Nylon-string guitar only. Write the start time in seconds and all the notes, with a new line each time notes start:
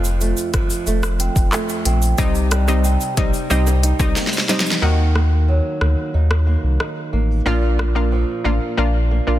Already playing: F2 F3
0.21 A3
0.54 F3
0.87 A3
1.20 C4
1.53 A3
1.86 C4
2.19 C3
2.52 G3
2.84 C4
3.17 G3
3.50 C4
3.83 D#4
4.16 A#3
4.33 C4
4.49 D#4
4.82 D#3
5.15 A#3
5.48 F#3
5.81 A#3
6.14 D#4
6.47 A#3
6.80 D#4
7.13 A#3
7.46 A#2
7.79 A#3
8.12 F3
8.45 A#3
8.78 D4
9.11 A#3